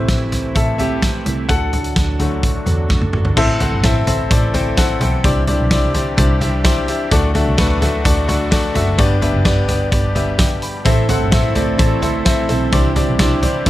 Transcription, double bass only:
0.09 0.52 A1 loud
0.56 1.22 A1 loud
1.25 1.47 C2 medium
1.49 1.93 D2 loud
1.96 2.52 D2 medium
2.66 2.89 E2 loud
2.90 3.12 F#2 medium
3.13 3.35 G1 medium
3.37 3.70 A1 loud
3.72 3.83 G1 medium
3.83 4.27 A1 loud
4.31 4.97 A1 loud
5.01 5.22 B1 medium
5.24 5.57 C2 loud
5.59 5.70 B1 loud
5.71 6.14 C2 loud
6.18 6.85 C2 loud
7.12 7.44 D2 loud
7.46 7.57 C2 loud
7.58 8.02 D2 loud
8.05 8.72 D2 loud
8.75 8.97 F#1 medium
8.98 9.31 G1 loud
9.33 9.44 F#1 medium
9.45 9.89 G1 loud
9.92 10.59 G1 loud
10.85 11.18 A1 loud
11.21 11.32 G1 medium
11.32 11.76 A1 loud
11.79 12.46 A1 loud
12.49 12.71 B1 medium
12.72 13.05 C2 loud
13.08 13.19 B1 loud
13.19 13.63 C2 loud
13.66 13.70 C2 loud

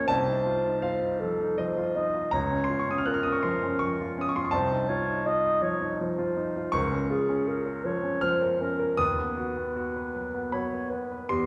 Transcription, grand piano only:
0.00 0.12 F3 soft
0.00 0.12 A#3 soft
0.00 0.11 C#4 soft
0.00 0.11 F4 soft
0.00 0.11 A#5 medium
0.00 0.12 C6 medium
0.08 2.29 C2 medium
0.08 0.83 A5 loud
0.28 0.57 D#4 soft
0.46 0.76 F4 soft
0.65 0.95 D#4 soft
0.82 1.14 F4 soft
0.82 1.58 F5 medium
1.03 1.33 D#4 soft
1.22 1.52 F3 soft
1.40 1.70 D#4 soft
1.58 1.89 F3 soft
1.58 1.96 D#5 medium
1.77 2.07 F4 soft
1.96 2.26 D#4 soft
2.14 2.33 F4 soft
2.31 4.49 C#2 medium
2.31 2.65 A#5 medium
2.52 2.81 C#4 soft
2.64 2.79 C6 medium
2.70 2.99 F4 soft
2.79 2.91 C#6 medium
2.89 3.18 C#4 soft
2.89 2.99 D#6 medium
2.98 3.06 F6 medium
3.06 3.36 F4 soft
3.06 3.14 F#6 medium
3.14 3.23 F6 medium
3.23 3.55 C#4 soft
3.23 3.33 D#6 medium
3.32 3.43 C#6 medium
3.43 3.73 F3 soft
3.43 3.80 C6 medium
3.63 3.92 C#4 soft
3.79 4.10 F3 soft
3.79 4.19 C#6 medium
4.00 4.29 F4 soft
4.18 4.47 C#4 soft
4.18 4.29 D#6 medium
4.29 4.37 C#6 medium
4.36 4.54 F4 soft
4.36 4.45 C6 medium
4.45 4.53 C#6 medium
4.51 6.69 C2 medium
4.51 6.72 A5 medium
4.71 5.00 D#4 soft
4.89 5.18 F4 medium
5.08 5.37 D#4 soft
5.26 5.55 F4 soft
5.44 5.74 D#4 soft
5.62 5.92 F3 soft
5.81 6.11 D#4 soft
6.01 6.30 F3 soft
6.18 6.48 F4 soft
6.36 6.66 D#4 soft
6.56 6.74 F4 soft
6.72 8.94 C#2 medium
6.72 8.21 C#6 loud
6.92 7.21 C#4 soft
7.10 7.39 F4 soft
7.29 7.58 C#4 soft
7.47 7.77 F4 soft
7.66 7.96 A#4 soft
7.85 8.15 F3 soft
8.04 8.34 C#4 soft
8.21 8.53 F3 soft
8.21 8.98 F6 medium
8.42 8.72 A#4 soft
8.61 8.91 C#4 soft
8.79 8.98 A#4 soft
8.97 11.26 D#2 medium
8.97 10.53 D#6 loud
9.19 9.49 B3 soft
9.37 9.69 F#4 soft
9.57 9.88 B3 soft
9.76 10.08 F#4 soft
9.96 10.27 B4 soft
10.15 10.46 F#3 soft
10.34 10.65 B3 soft
10.52 10.84 F#3 soft
10.52 11.29 B5 medium
10.73 11.03 B4 soft
10.92 11.22 B3 soft
11.12 11.30 B4 soft
11.29 11.46 E2 medium
11.29 11.46 C6 medium

